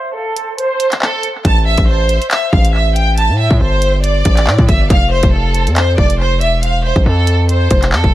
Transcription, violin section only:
0.00 0.11 C5 medium
0.15 0.56 A4 medium
0.59 0.99 C5 medium
1.02 1.19 A4 medium
1.45 1.62 A5 medium
1.66 1.84 E5 medium
1.88 2.29 C5 medium
2.31 2.49 E5 medium
2.53 2.70 F5 medium
2.74 2.92 E5 medium
2.96 3.14 G5 medium
3.18 3.35 A5 medium
3.39 3.57 E5 medium
3.61 4.01 C5 loud
4.04 4.65 D5 medium
4.69 4.86 E5 medium
4.90 5.08 F5 medium
5.12 5.29 C5 medium
5.33 5.74 A4 medium
5.76 5.94 C5 medium
5.98 6.16 D5 medium
6.20 6.37 C5 medium
6.41 6.59 E5 medium
6.63 6.80 F5 medium
6.84 7.02 C5 medium
7.06 7.47 A4 medium
7.49 7.90 C5 medium
7.92 8.10 A4 medium

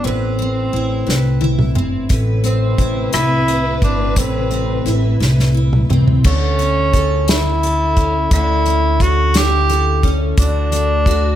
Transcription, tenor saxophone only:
0.05 1.76 C4 medium
2.45 3.09 C4 medium
3.14 3.78 E4 loud
3.84 4.20 D4 medium
4.19 5.22 C4 medium
6.26 7.25 C#4 loud
7.30 8.29 E4 loud
8.33 9.04 E4 loud
9.02 9.38 F#4 loud
9.37 10.13 G4 loud
10.39 11.36 D4 loud

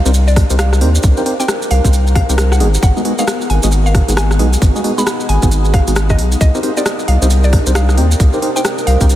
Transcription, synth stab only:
0.05 0.10 C4 medium
0.05 0.10 D#4 medium
0.05 0.10 G4 medium
0.05 0.10 A#4 medium
0.05 0.10 C5 medium
0.50 0.55 C4 medium
0.50 0.55 D#4 medium
0.50 0.55 G4 medium
0.50 0.55 A#4 medium
0.50 0.55 C5 loud
0.81 0.89 C4 medium
0.81 0.89 D#4 medium
0.81 0.89 G4 medium
0.81 0.89 A#4 medium
0.81 0.89 C5 medium
1.17 1.22 C4 medium
1.17 1.22 D#4 medium
1.17 1.22 G4 medium
1.17 1.22 A#4 medium
1.17 1.22 C5 loud
1.26 1.34 C4 medium
1.26 1.34 D#4 medium
1.26 1.34 G4 medium
1.26 1.34 A#4 medium
1.26 1.34 C5 medium
1.40 1.45 C4 medium
1.40 1.45 D#4 medium
1.40 1.45 G4 medium
1.40 1.45 A#4 medium
1.40 1.45 C5 medium
1.84 1.89 C4 medium
1.84 1.89 D#4 medium
1.84 1.89 G4 medium
1.84 1.89 A#4 medium
1.84 1.89 C5 medium
2.29 2.34 C4 medium
2.29 2.34 D#4 medium
2.29 2.34 G4 medium
2.29 2.34 A#4 medium
2.29 2.34 C5 loud
2.60 2.68 G#3 medium
2.60 2.68 B3 medium
2.60 2.68 D#4 medium
2.60 2.68 F#4 medium
2.60 2.68 G#4 medium
2.96 3.01 G#3 medium
2.96 3.01 B3 medium
2.96 3.01 D#4 medium
2.96 3.01 F#4 medium
2.96 3.01 G#4 loud
3.05 3.13 G#3 medium
3.05 3.13 B3 medium
3.05 3.13 D#4 medium
3.05 3.13 F#4 medium
3.05 3.13 G#4 medium
3.19 3.24 G#3 medium
3.19 3.24 B3 medium
3.19 3.24 D#4 medium
3.19 3.24 F#4 medium
3.19 3.24 G#4 medium
3.64 3.69 G#3 medium
3.64 3.69 B3 medium
3.64 3.69 D#4 medium
3.64 3.69 F#4 medium
3.64 3.69 G#4 medium
4.08 4.13 G#3 medium
4.08 4.13 B3 medium
4.08 4.13 D#4 medium
4.08 4.13 F#4 medium
4.08 4.13 G#4 loud
4.39 4.47 G#3 medium
4.39 4.47 B3 medium
4.39 4.47 D#4 medium
4.39 4.47 F#4 medium
4.39 4.47 G#4 loud
4.75 4.80 G#3 medium
4.75 4.80 B3 medium
4.75 4.80 D#4 medium
4.75 4.80 F#4 medium
4.75 4.80 G#4 loud
4.84 4.92 G#3 medium
4.84 4.92 B3 medium
4.84 4.92 D#4 medium
4.84 4.92 F#4 medium
4.84 4.92 G#4 medium
4.98 5.03 G#3 medium
4.98 5.03 B3 medium
4.98 5.03 D#4 medium
4.98 5.03 F#4 medium
4.98 5.03 G#4 loud
5.43 5.48 G#3 medium
5.43 5.48 B3 medium
5.43 5.48 D#4 medium
5.43 5.48 F#4 medium
5.43 5.48 G#4 medium
5.87 5.92 G#3 medium
5.87 5.92 B3 medium
5.87 5.92 D#4 medium
5.87 5.92 F#4 medium
5.87 5.92 G#4 medium
6.55 6.60 C4 medium
6.55 6.60 D#4 medium
6.55 6.60 G4 medium
6.55 6.60 A#4 medium
6.55 6.60 C5 loud
6.63 6.71 C4 medium
6.63 6.71 D#4 medium
6.63 6.71 G4 medium
6.63 6.71 A#4 medium
6.63 6.71 C5 medium
6.77 6.82 C4 medium
6.77 6.82 D#4 medium
6.77 6.82 G4 medium
6.77 6.82 A#4 medium
6.77 6.82 C5 medium
7.22 7.27 C4 medium
7.22 7.27 D#4 medium
7.22 7.27 G4 medium
7.22 7.27 A#4 medium
7.22 7.27 C5 medium
7.67 7.72 C4 medium
7.67 7.72 D#4 medium
7.67 7.72 G4 medium
7.67 7.72 A#4 medium
7.67 7.72 C5 loud
7.98 8.06 C4 medium
7.98 8.06 D#4 medium
7.98 8.06 G4 medium
7.98 8.06 A#4 medium
7.98 8.06 C5 medium
8.34 8.39 C4 medium
8.34 8.39 D#4 medium
8.34 8.39 G4 medium
8.34 8.39 A#4 medium
8.34 8.39 C5 loud
8.42 8.50 C4 medium
8.42 8.50 D#4 medium
8.42 8.50 G4 medium
8.42 8.50 A#4 medium
8.42 8.50 C5 loud
8.56 8.61 C4 medium
8.56 8.61 D#4 medium
8.56 8.61 G4 medium
8.56 8.61 A#4 medium
8.56 8.61 C5 medium
9.01 9.06 C4 medium
9.01 9.06 D#4 medium
9.01 9.06 G4 medium
9.01 9.06 A#4 medium
9.01 9.06 C5 medium

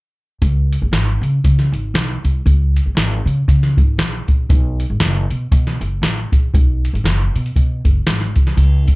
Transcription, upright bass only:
0.42 0.74 C#2 medium
0.82 0.91 A#1 medium
0.92 1.16 G#1 medium
1.21 1.39 C#3 medium
1.45 1.68 C#3 loud
1.72 1.90 G#1 medium
1.94 2.18 B1 medium
2.24 2.41 C2 medium
2.46 2.78 C#2 medium
2.86 2.94 A#1 medium
2.95 3.19 G#1 medium
3.26 3.43 C#3 loud
3.48 3.72 C#3 loud
3.78 3.95 G#1 medium
3.98 4.22 A#1 medium
4.28 4.45 A#1 medium
4.50 4.82 B1 loud
4.90 4.98 G#1 medium
5.00 5.24 F#1 medium
5.30 5.47 B2 medium
5.52 5.75 B2 loud
5.81 5.98 F#1 medium
6.02 6.26 A1 medium
6.32 6.49 A#1 medium
6.54 6.86 B1 loud
6.93 7.02 G#1 medium
7.04 7.28 F#1 medium
7.35 7.52 B2 medium
7.56 7.80 B2 medium
7.85 8.02 F#1 medium
8.07 8.31 G#1 medium
8.36 8.53 C2 medium
8.57 8.88 C#2 medium
8.88 8.95 A#1 medium

